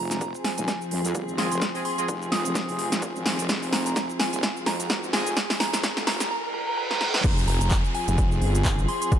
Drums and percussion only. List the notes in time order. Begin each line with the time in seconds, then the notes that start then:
0.11 snare, closed hi-hat, shaker
0.21 kick, closed hi-hat, shaker
0.35 shaker
0.44 snare, open hi-hat
0.58 closed hi-hat, shaker
0.68 kick, snare, closed hi-hat, shaker
0.81 shaker
0.91 open hi-hat
1.05 closed hi-hat, shaker
1.15 kick, closed hi-hat, shaker
1.28 shaker
1.38 snare, open hi-hat
1.52 closed hi-hat, shaker
1.62 kick, snare, closed hi-hat, shaker
1.75 open hi-hat, shaker
1.85 open hi-hat
1.98 closed hi-hat, shaker
2.08 kick, closed hi-hat, shaker
2.22 shaker
2.32 snare, open hi-hat
2.45 closed hi-hat, shaker
2.55 kick, snare, closed hi-hat, shaker
2.69 open hi-hat, shaker
2.79 open hi-hat
2.92 snare, closed hi-hat, shaker
3.02 kick, closed hi-hat, shaker
3.16 shaker
3.26 snare, open hi-hat
3.39 closed hi-hat, shaker
3.49 kick, snare, closed hi-hat, shaker
3.62 open hi-hat, shaker
3.73 snare, open hi-hat
3.86 closed hi-hat, shaker
3.96 kick, snare, closed hi-hat, shaker
4.10 shaker
4.20 snare, open hi-hat
4.33 closed hi-hat, shaker
4.43 kick, snare, closed hi-hat, shaker
4.56 shaker
4.66 snare, open hi-hat
4.80 closed hi-hat, shaker
4.90 kick, snare, closed hi-hat, shaker
5.03 shaker
5.13 snare, open hi-hat
5.27 closed hi-hat, shaker
5.37 kick, snare, closed hi-hat, shaker
5.50 snare, open hi-hat, shaker
5.60 snare, open hi-hat
5.74 snare, closed hi-hat, shaker
5.84 kick, snare, closed hi-hat, shaker
5.97 snare, shaker
6.07 snare, open hi-hat
6.20 snare, closed hi-hat, shaker
6.91 snare
7.01 snare
7.14 snare
7.24 kick, closed hi-hat, crash, shaker
7.38 open hi-hat, shaker
7.48 open hi-hat
7.61 closed hi-hat, shaker
7.71 kick, clap, closed hi-hat, shaker
7.85 shaker
7.95 open hi-hat
8.08 closed hi-hat, shaker
8.18 kick, closed hi-hat, shaker
8.32 shaker
8.42 open hi-hat
8.55 closed hi-hat, shaker
8.65 kick, clap, closed hi-hat, shaker
8.79 shaker
8.88 open hi-hat
9.02 closed hi-hat, shaker
9.12 kick, closed hi-hat, shaker